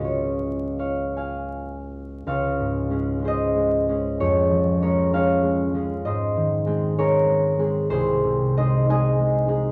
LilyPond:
<<
  \new Staff \with { instrumentName = "Harp" } { \time 6/8 \key des \major \tempo 4. = 64 des''4 <des'' f''>8 <f'' aes''>4. | <des'' f''>4. <c'' ees''>4. | <aes' des''>4 <bes' des''>8 <des'' f''>4. | <c'' ees''>4. <bes' des''>4. |
<aes' c''>4 <c'' ees''>8 <ees'' aes''>4. | }
  \new Staff \with { instrumentName = "Harp" } { \time 6/8 \key des \major << { <des, aes des' f'>2.~ | <des, aes des' f'>2.~ | <des, aes des' f'>2. | r2. |
r2. | } \\ { r2. | des,8 aes,8 <aes des' aes'>8 <aes des' aes'>8 aes8 <aes des' aes'>8 | f,8 f8 <aes des' aes'>8 <aes des' aes'>8 aes8 <aes des' aes'>8 | aes,8 ees8 <aes c' aes'>8 <aes c' aes'>8 aes8 <aes c' aes'>8 |
c,8 c8 <aes ees' aes'>8 <aes ees' aes'>8 aes8 <aes ees' aes'>8 | } >> }
>>